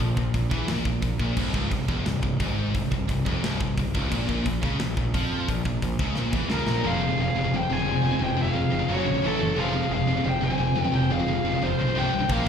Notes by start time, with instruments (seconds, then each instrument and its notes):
0.00 picked electric bass A#1, distorted electric guitar A#2
0.16 picked electric bass A#1, distorted electric guitar A#2, kick
0.34 picked electric bass A#1, distorted electric guitar A#2, kick, open hi-hat
0.50 picked electric bass E2, distorted electric guitar E3, kick
0.67 picked electric bass A#1, distorted electric guitar A#2, snare, open hi-hat
0.84 picked electric bass A#1, distorted electric guitar A#2, kick
1.02 picked electric bass A#1, distorted electric guitar A#2, kick, open hi-hat
1.20 picked electric bass A#1, distorted electric guitar A#2, kick
1.37 picked electric bass C1, distorted electric guitar C2, kick, crash
1.54 picked electric bass C#1, distorted electric guitar C#2, kick
1.70 picked electric bass C1, distorted electric guitar C2, kick, open hi-hat
1.88 picked electric bass E1, distorted electric guitar E2, kick
2.05 picked electric bass C1, distorted electric guitar C2, snare, open hi-hat
2.23 picked electric bass C1, distorted electric guitar C2, kick
2.40 picked electric bass G#1, distorted electric guitar G#2, kick, open hi-hat
2.74 picked electric bass C1, distorted electric guitar C2, kick, open hi-hat
2.91 picked electric bass C1, distorted electric guitar C2, kick
3.08 picked electric bass C1, distorted electric guitar C2, kick, open hi-hat
3.25 picked electric bass F1, distorted electric guitar F2, kick
3.43 picked electric bass C1, distorted electric guitar C2, snare, open hi-hat
3.60 picked electric bass C1, distorted electric guitar C2, kick
3.77 picked electric bass C1, distorted electric guitar C2, kick, open hi-hat
3.94 picked electric bass C#1, distorted electric guitar C#2, kick
4.11 picked electric bass A#1, distorted electric guitar A#2, kick, crash
4.29 picked electric bass A#1, distorted electric guitar A#2, kick
4.46 picked electric bass A#1, distorted electric guitar A#2, kick, open hi-hat
4.62 picked electric bass C#2, distorted electric guitar C#3, kick
4.78 picked electric bass A#1, distorted electric guitar A#2, snare, open hi-hat
4.97 picked electric bass A#1, distorted electric guitar A#2, kick
5.14 picked electric bass F2, distorted electric guitar F3, kick, open hi-hat
5.48 picked electric bass A#1, distorted electric guitar A#2, kick, open hi-hat
5.65 picked electric bass A#1, distorted electric guitar A#2, kick
5.82 picked electric bass A#1, distorted electric guitar A#2, kick, open hi-hat
5.99 picked electric bass C#2, distorted electric guitar C#3, kick
6.15 picked electric bass A#1, distorted electric guitar A#2, snare
6.33 picked electric bass E2, distorted electric guitar E3, kick
6.49 picked electric bass C#2, distorted electric guitar C#3, lead electric guitar F4 A#4, snare
6.67 picked electric bass A#1, distorted electric guitar A#2, snare
6.83 picked electric bass F1, distorted electric guitar F2 C3 F3 G#3 C4 F4, string section F3 C4 F4 G#4, lead electric guitar G#4 F5
7.01 distorted electric guitar F2 C3
7.09 distorted electric guitar F2 C3
7.17 picked electric bass F1, distorted electric guitar F2 C3, lead electric guitar G#4 F5
7.35 picked electric bass F1, distorted electric guitar F2 C3
7.44 distorted electric guitar F2 C3
7.52 picked electric bass F1, distorted electric guitar F2 C3, lead electric guitar C5
7.56 lead electric guitar G5
7.69 picked electric bass F1, distorted electric guitar F2 C3, lead electric guitar C5 G#5
7.77 distorted electric guitar F2 C3
7.85 picked electric bass F1, distorted electric guitar F2 C3
8.02 picked electric bass F1, distorted electric guitar F2 C3 F3 G#3 C4 F4
8.06 distorted electric guitar F2
8.12 distorted electric guitar F2 C3
8.19 picked electric bass E1, distorted electric guitar F2 C3 F3 G#3 C4, lead electric guitar C5
8.23 distorted electric guitar F4, lead electric guitar G5
8.37 picked electric bass F1, distorted electric guitar F2 C3, lead electric guitar G#4
8.42 lead electric guitar F5
8.46 distorted electric guitar F2 C3
8.54 picked electric bass F1, distorted electric guitar F2 C3
8.72 picked electric bass F1, distorted electric guitar F2 C3
8.79 distorted electric guitar F2 C3
8.89 picked electric bass F#1, distorted electric guitar F#2 C#3 F#3, string section F#3 C#4 F#4, lead electric guitar F#4 C#5
8.93 distorted electric guitar F#3
9.06 picked electric bass A#1, distorted electric guitar F#2 C#3
9.15 distorted electric guitar F#2 C#3
9.23 picked electric bass A1, distorted electric guitar A2 E3 A3, string section E3 A3 E4, lead electric guitar E4 A4
9.41 picked electric bass F#1, distorted electric guitar A2 E3
9.50 distorted electric guitar A2 E3
9.56 picked electric bass F1, distorted electric guitar F2 C3 F3 G#3 C4 F4, string section F3 C4 F4 G#4, lead electric guitar G#4 F5
9.75 distorted electric guitar F2 C3
9.82 distorted electric guitar F2 C3
9.90 picked electric bass F1, distorted electric guitar F2 C3, lead electric guitar G#4 F5
10.07 picked electric bass F1, distorted electric guitar F2 C3
10.16 distorted electric guitar F2 C3
10.25 picked electric bass F1, distorted electric guitar F2 C3, lead electric guitar C5
10.29 lead electric guitar G5
10.40 picked electric bass F1, distorted electric guitar F2 C3, lead electric guitar C5 G#5
10.50 distorted electric guitar F2 C3
10.58 picked electric bass F1, distorted electric guitar F2 C3
10.75 picked electric bass F1, distorted electric guitar F2 C3 F3 G#3 C4 F4, lead electric guitar B4
10.79 distorted electric guitar F2, lead electric guitar G5
10.84 distorted electric guitar F2 C3
10.91 picked electric bass E1, distorted electric guitar F2 C3 F3 G#3 C4
10.95 distorted electric guitar F4, lead electric guitar C5 G5
11.09 picked electric bass F1, distorted electric guitar F2 C3, lead electric guitar G#4 F5
11.19 distorted electric guitar F2 C3
11.28 picked electric bass F1, distorted electric guitar F2 C3
11.44 picked electric bass F1, distorted electric guitar F2 C3
11.52 distorted electric guitar F2 C3
11.61 picked electric bass F1, distorted electric guitar F2 C3, lead electric guitar F4 C5
11.79 picked electric bass B1, distorted electric guitar F2 C3
11.88 distorted electric guitar F2 C3
11.95 picked electric bass C1, distorted electric guitar C2 G2 C3, string section C3 G3 C5, lead electric guitar G5
11.99 distorted electric guitar C3, lead electric guitar C5
12.12 picked electric bass C1, distorted electric guitar C2 G2
12.20 distorted electric guitar C2 G2
12.28 picked electric bass A#1, distorted electric guitar A#2 F3 A#3 C#4 F4, string section A#3 C#4 F4, lead electric guitar F5, kick, crash
12.33 lead electric guitar A#4, distorted electric guitar A#4
12.45 distorted electric guitar A#2 F3